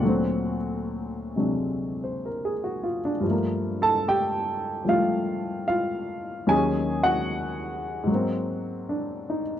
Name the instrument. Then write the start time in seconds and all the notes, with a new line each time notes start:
grand piano
Already playing: D2 F#4 F#5
0.01 A#2 D3
0.05 F#3 C4
1.36 C3 F#3 G#3 D4
2.04 C5
2.26 A#4
2.45 G#4
2.64 F#4
2.83 F4
3.05 D4
3.20 G2 F3
3.27 A3 A#3
3.82 A4 A5
4.08 G4 G5
4.84 F3 G3 A3
4.89 F4 F5
5.68 F4 F5
6.47 D#2 D#3 F#3 C#4 G#5
6.51 G#4
7.03 F#4 F#5
8.04 G#2 F#3
8.11 A#3 C4
8.89 D4
9.30 D#4